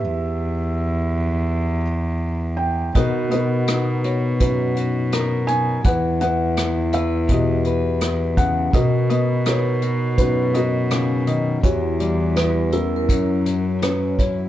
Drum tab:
HH |--------|xxxxxxxx|xxxxxxxx|xxxxxxxx|
SD |--------|--r---r-|--r---r-|--r---r-|
BD |--------|o---o---|o---o--o|o---o---|

HH |xxxxxxxx|
SD |--r---r-|
BD |o---o--o|